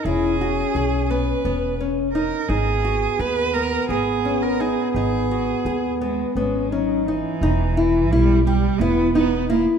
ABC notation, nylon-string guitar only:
X:1
M:7/8
L:1/8
Q:1/4=86
K:Elyd
V:1 name="Nylon-string guitar"
E F G B, B, C D | D F G B, B, C D | D F G B, B, C D | D E E =G E D E |]